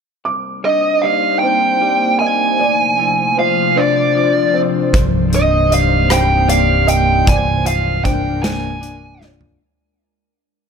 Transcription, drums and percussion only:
4.94 kick loud
4.94 closed hi-hat medium
5.33 closed hi-hat soft
5.72 closed hi-hat soft
6.10 cross-stick medium
6.10 closed hi-hat medium
6.49 closed hi-hat medium
6.88 closed hi-hat soft
7.27 kick medium
7.27 closed hi-hat medium
7.66 closed hi-hat soft
8.05 kick medium
8.05 closed hi-hat medium
8.44 snare loud
8.44 closed hi-hat medium
8.83 closed hi-hat medium
9.22 snare soft
9.41 floor tom medium

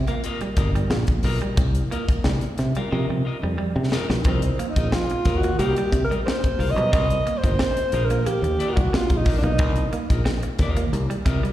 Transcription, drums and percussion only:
0.08 closed hi-hat soft
0.24 closed hi-hat medium
0.41 closed hi-hat soft
0.57 kick loud
0.57 closed hi-hat medium
0.76 closed hi-hat soft
0.91 snare loud
1.07 kick medium
1.07 closed hi-hat medium
1.23 open hi-hat medium
1.41 closed hi-hat soft
1.57 kick loud
1.57 closed hi-hat medium
1.75 closed hi-hat medium
1.92 closed hi-hat medium
2.09 kick medium
2.09 closed hi-hat medium
2.24 snare loud
2.41 closed hi-hat medium
2.58 snare soft
2.58 closed hi-hat medium
2.75 closed hi-hat medium
3.92 snare loud
4.10 snare medium
4.24 kick loud
4.24 closed hi-hat medium
4.42 closed hi-hat medium
4.59 closed hi-hat medium
4.76 kick medium
4.76 closed hi-hat medium
4.92 snare loud
5.09 closed hi-hat medium
5.25 kick medium
5.25 snare soft
5.25 closed hi-hat medium
5.43 closed hi-hat medium
5.59 closed hi-hat medium
5.76 closed hi-hat soft
5.92 kick medium
5.92 closed hi-hat medium
6.12 closed hi-hat soft
6.28 snare loud
6.44 kick medium
6.44 closed hi-hat medium
6.60 open hi-hat medium
6.78 closed hi-hat soft
6.93 kick loud
6.93 closed hi-hat medium
7.10 closed hi-hat medium
7.27 closed hi-hat medium
7.44 kick medium
7.44 closed hi-hat medium
7.59 snare loud
7.77 closed hi-hat medium
7.92 closed hi-hat medium
8.10 closed hi-hat medium
8.26 closed hi-hat medium
8.44 closed hi-hat soft
8.60 closed hi-hat medium
8.77 kick medium
8.77 closed hi-hat soft
8.94 snare loud
9.10 kick medium
9.10 closed hi-hat medium
9.25 kick loud
9.25 open hi-hat medium
9.43 closed hi-hat soft
9.59 kick loud
9.59 closed hi-hat medium
9.76 closed hi-hat medium
9.93 closed hi-hat medium
10.10 kick loud
10.10 closed hi-hat medium
10.26 snare loud
10.43 closed hi-hat medium
10.59 kick medium
10.59 snare soft
10.59 closed hi-hat medium
10.77 closed hi-hat medium
10.93 closed hi-hat medium
11.11 closed hi-hat medium
11.26 kick loud
11.26 closed hi-hat medium
11.45 closed hi-hat soft

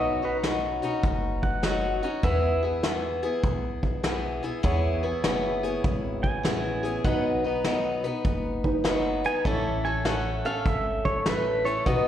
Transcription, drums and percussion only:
0.43 snare loud
0.43 closed hi-hat medium
0.82 closed hi-hat medium
1.03 kick loud
1.03 closed hi-hat medium
1.43 kick medium
1.63 snare loud
1.63 closed hi-hat medium
2.03 closed hi-hat medium
2.23 kick loud
2.23 closed hi-hat medium
2.83 snare loud
2.83 closed hi-hat medium
3.23 closed hi-hat medium
3.44 kick loud
3.44 closed hi-hat medium
3.83 kick medium
4.04 snare loud
4.04 closed hi-hat medium
4.43 closed hi-hat medium
4.64 kick loud
4.64 closed hi-hat medium
5.24 snare loud
5.24 closed hi-hat medium
5.64 closed hi-hat medium
5.84 kick loud
5.84 closed hi-hat medium
6.24 kick medium
6.45 snare loud
6.45 closed hi-hat medium
6.84 closed hi-hat medium
7.04 kick loud
7.04 closed hi-hat medium
7.64 snare loud
7.64 closed hi-hat medium
8.04 closed hi-hat medium
8.25 kick loud
8.25 closed hi-hat medium
8.64 kick medium
8.85 snare loud
8.85 closed hi-hat medium
9.24 closed hi-hat medium
9.45 kick loud
9.45 closed hi-hat medium
10.05 snare loud
10.05 closed hi-hat medium
10.45 closed hi-hat medium
10.65 kick loud
10.65 closed hi-hat medium
11.05 kick medium
11.26 snare loud
11.26 closed hi-hat medium
11.66 closed hi-hat medium
11.86 kick loud
11.86 closed hi-hat medium

